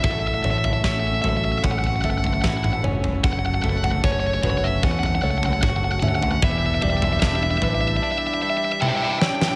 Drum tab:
SD |----o-------o---|----------------|----o---------oo|
T1 |----------------|----------------|------------o---|
T2 |-------------oo-|------o-----o-o-|----------------|
FT |o-oo--o-ooooo--o|o-oo--o-oo-o---o|o-oo--o---------|
BD |o---o---o---o---|o---o---o---o---|o---o-----------|